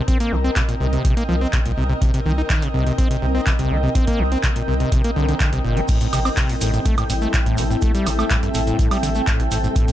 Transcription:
Already playing: C4 A#4 D#5 G5
0.08 C4, kick, closed hi-hat
0.20 A#3, closed hi-hat
0.32 C2 C3
0.44 C4
0.56 C3, kick, clap, closed hi-hat
0.69 A#2, closed hi-hat
0.80 C2 C3
0.93 C3, closed hi-hat
1.05 C3, kick, closed hi-hat
1.17 A#3, closed hi-hat
1.29 C2 F3
1.41 C4
1.53 C3, kick, clap, closed hi-hat
1.65 C2 A#2, closed hi-hat
1.77 C2 C3
1.90 C3
2.01 C3, kick, closed hi-hat
2.14 C3, closed hi-hat
2.26 C2 D#3
2.38 D#4
2.50 D#3, kick, clap, closed hi-hat
2.62 C3, closed hi-hat
2.74 C2 C3
2.86 C3, closed hi-hat
2.98 C4, kick, closed hi-hat
3.10 C3, closed hi-hat
3.22 C2 C3
3.35 C4
3.47 C3, kick, clap, closed hi-hat
3.59 C2 C3, closed hi-hat
3.71 C2 D#3
3.83 C3
3.95 C4, kick, closed hi-hat
4.07 A#3, kick, closed hi-hat
4.19 C2 C3
4.32 C4, closed hi-hat
4.43 C3, kick, clap, closed hi-hat
4.56 A#2, closed hi-hat
4.68 C2 C3
4.80 C3, closed hi-hat
4.92 C3, kick, closed hi-hat
5.04 A#3, closed hi-hat
5.16 C2 D3
5.29 D3, closed hi-hat
5.40 D3, kick, clap, closed hi-hat
5.53 C2 C3, closed hi-hat
5.65 G1 A#2
5.77 C4, closed hi-hat
5.88 A2 G3 C4 E4 A4, kick, closed hi-hat, crash, cabasa
5.97 A4, cabasa
6.01 A2, closed hi-hat
6.13 A1 C3, open hi-hat, cabasa, high woodblock
6.25 C4 E5, cabasa, high woodblock
6.37 C3, kick, clap, closed hi-hat, cabasa
6.49 A2, open hi-hat
6.61 A1 A2, open hi-hat, cabasa
6.74 A2, closed hi-hat, cabasa
6.85 A3, kick, closed hi-hat, cabasa
6.98 A2, closed hi-hat, high woodblock
7.10 A1 A2, open hi-hat, cabasa
7.21 A3, cabasa
7.34 A2, kick, clap, closed hi-hat, cabasa
7.46 A1 A2, closed hi-hat
7.58 A1 C3, open hi-hat, cabasa
7.70 A2, cabasa
7.82 A3, kick, closed hi-hat, cabasa
7.95 G3, closed hi-hat, cabasa
8.06 A1 A2, open hi-hat, cabasa, high woodblock
8.19 A3, cabasa, high woodblock
8.30 A2, kick, clap, closed hi-hat, cabasa
8.43 G2, closed hi-hat
8.54 A1 A2, open hi-hat, cabasa
8.67 A2, closed hi-hat, cabasa
8.79 A2, kick, closed hi-hat, cabasa
8.91 G3, open hi-hat, high woodblock
9.03 A1 D3, open hi-hat, cabasa
9.15 A3, cabasa
9.27 A2, kick, clap, closed hi-hat, cabasa
9.40 A1 D3, closed hi-hat
9.51 A1 A2, open hi-hat, cabasa
9.64 A2, cabasa
9.76 A2 D4, kick, closed hi-hat, cabasa
9.88 A2, closed hi-hat, cabasa

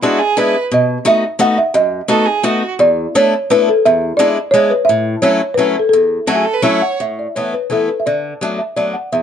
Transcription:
Already playing: B5
0.02 G#3 B3 D4 E4 F#4
0.19 G#4
0.37 G#3 B3 D4 E4 B4
0.71 B2 D#5
1.05 A3 B3 D#4 F#4 E5
1.39 A3 B3 D#4 F#4 F#5
1.58 E5
1.74 F#2 D#5
2.08 A3 B3 D#4 F#4 A4
2.26 G#4
2.43 A3 B3 D#4 F#4
2.79 E2 D5
3.15 A3 B3 D4 E4 C#5
3.50 A3 B3 D4 E4 B4
3.69 A4
3.86 E2 E5
4.17 G#3 B3 D4 E4 D5
4.51 G#3 B3 D4 E4 C#5
4.70 B4
4.85 E5
4.89 A2
5.22 F#3 A3 C#4 E4 C#5
5.54 F#3 B4
5.58 A3 C#4 E4
5.79 A4
5.89 A4
5.93 E2
6.27 F#3 A3 C#4 E4 F#4
6.35 G#4
6.45 A4
6.54 B4
6.62 F#3 A3 C#4 E4 C#5
6.82 F#5
7.00 A2 E5
7.19 D5
7.36 E3 A3 B3 E4 C#5
7.54 B4
7.70 E3 A3 B3 E4 A4
8.00 E5
8.06 D3 D5
8.41 F#3 A3 B3 D4
8.59 E5
8.76 F#3 A3 B3 D4 D5
8.94 F#5
9.12 E2 E5

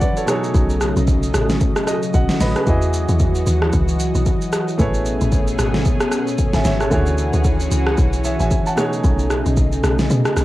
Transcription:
Already playing: D3 E3 F#3 A3 C#4 E4 F#4 G#4 C#5 F#5 A5
0.00 B4 D5, kick, shaker
0.17 A4 C#5, shaker
0.26 B2 C#3 F#3 A3 D#4 G#4 A4 C#5 D#5, cross-stick, shaker
0.44 shaker
0.55 B1, kick, shaker
0.70 shaker
0.81 cross-stick, shaker
0.96 B1, shaker
1.07 kick, shaker
1.23 shaker
1.34 A1, cross-stick, shaker
1.50 snare, shaker
1.60 kick, shaker
1.76 cross-stick, shaker
1.87 D#5, cross-stick, shaker
2.03 shaker
2.14 B1 D#5 F#5, kick, shaker
2.29 snare, shaker
2.40 A1 B4 D#5 B5, snare, open hi-hat, shaker
2.56 G#4 B4, cross-stick, shaker
2.65 E2 E3 E4 F#4 G#4 D#5, kick, shaker
2.82 shaker
2.93 shaker
3.09 E2, shaker
3.20 kick, shaker
3.35 shaker
3.47 D#2, shaker
3.62 cross-stick
3.73 C#2, kick, shaker
3.88 shaker
4.00 shaker
4.15 B1, shaker
4.26 kick, shaker
4.42 shaker
4.53 cross-stick, shaker
4.68 shaker
4.78 A1 B2 A3 C#4 E4 G#4 B4 C#5, kick, shaker
4.94 shaker
5.06 shaker
5.21 A1, shaker
5.32 kick, shaker
5.48 shaker
5.59 G#1, cross-stick, shaker
5.74 snare
5.85 kick, shaker
6.00 cross-stick, shaker
6.12 cross-stick, shaker
6.27 shaker
6.38 kick, shaker
6.53 A1 E5 G#5, snare, shaker
6.65 G#1 C#5 E5, snare, shaker
6.80 A4 C#5, cross-stick, shaker
6.90 D2 D3 E3 A3 E4 F#4 G#4 C#5, kick, shaker
7.07 shaker
7.18 shaker
7.33 D2, shaker
7.44 kick, shaker
7.60 shaker
7.71 C#2, shaker
7.87 cross-stick
7.98 B1, kick, shaker
8.13 shaker
8.24 C#5 E5, shaker
8.40 A1 E5 G#5, shaker
8.51 kick, shaker
8.66 F#5 A5, shaker
8.76 B2 C#3 A3 D#4 G#4 C#5, cross-stick, shaker
8.93 shaker
9.04 B1, kick, shaker
9.19 shaker
9.30 cross-stick, shaker
9.46 B1, shaker
9.57 kick, shaker
9.72 shaker
9.84 B1, cross-stick, shaker
9.99 snare, shaker
10.10 B2, shaker
10.25 cross-stick, shaker
10.37 B1, cross-stick, shaker

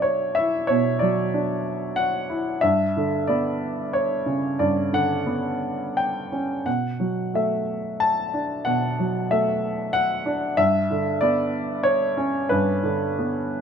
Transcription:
Already playing: B2 F#3 D4 D5 E5
0.02 C#5
0.35 E4 E5
0.67 B2 C#5
0.99 F#3 D5
1.34 D4
1.96 F#5
2.30 E4
2.61 G2 E5
2.97 D3
3.27 B3 D5
3.93 C#5
4.26 C#3
4.59 G2 D5
4.93 D3 F#5
5.26 B3
5.97 G5
6.32 C#4
6.66 B2 F#5
7.00 F#3
7.34 A3 E5
8.00 A5
8.34 D4
8.65 B2 F#5
8.99 F#3
9.31 A3 E5
9.93 F#5
10.26 D4
10.57 G2 E5
10.91 D3
11.21 B3 D5
11.83 C#5
12.17 C#4
12.49 G2 B4
12.83 D3
13.19 B3

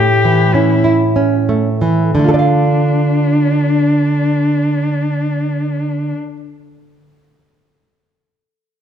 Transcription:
Already playing: A2 A3 G4
0.25 E3
0.54 C#4 E4
0.84 E4
1.16 C#4
1.49 A3
1.82 E3
2.15 D3 D4
2.19 A3
2.24 F4
2.29 A4
2.34 D5
2.39 F5

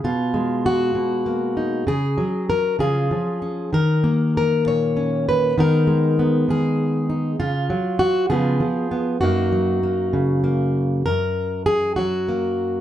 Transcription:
0.04 B2 F4
0.34 G#3
0.66 F#4
0.95 B2
1.26 A#3
1.57 D#4
1.87 C#3 G#4
2.18 F#3
2.50 A#4
2.79 C#3 F3 C#4 F4 G#4
3.11 F3
3.42 C#4
3.73 D#3 A#4
4.04 A#3
4.37 A#4
4.66 A#2 C#5
4.97 C#4
5.29 B4
5.58 D#3 G#3 B3 D#4 A#4
5.87 G#3
6.19 B3
6.48 D#3 G#4
7.10 D#4
7.40 C#3 F4
7.70 F#3
7.99 F#4
8.30 C#3 F3 B3 F4 G#4
8.60 F3
8.91 B3
9.21 F#2 F#3 A#3 D#4 F#4
9.52 F#3
9.83 A#3
10.13 C#3
10.44 A#3
11.06 F#2 A#4
11.66 G#4
11.96 F#3 F#4
12.29 A#3

